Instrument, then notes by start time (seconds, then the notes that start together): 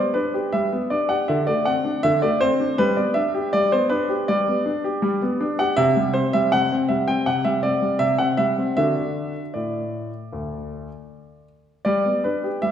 grand piano
Already playing: B3 C5
0.14 D4 B4
0.34 G4
0.53 G3 E5
0.72 B3
0.90 D4 D5
1.09 G4 F#5
1.28 D3 E5
1.47 A3 D5
1.65 C4 F#5
1.85 D4
2.03 D3 E5
2.22 A3 D5
2.41 C4 C5
2.60 D4
2.78 G3 B4
2.97 B3 D5
3.14 D4 E5
3.34 G4
3.53 G3 D5
3.72 B3 C5
3.90 D4 B4
4.09 G4
4.28 G3 D5
4.48 B3
4.66 D4
4.84 G4
5.02 G3
5.22 B3
5.41 D4
5.59 G4 F#5
5.77 C3 E5
5.96 G3
6.14 C4 C5
6.33 G3 E5
6.52 C3 F#5
6.72 C4
6.89 G3 E5
7.08 C4 G5
7.26 C3 F#5
7.45 G3 E5
7.63 C4 D5
7.82 G3
7.99 C3 E5
8.18 C4 F#5
8.37 G3 E5
8.58 C4
8.77 D3 D4 F#4 E5
9.54 A2 D5
10.33 D2
11.85 G3 D5
12.05 B3
12.24 D4 B4
12.44 G4
12.62 G3 E5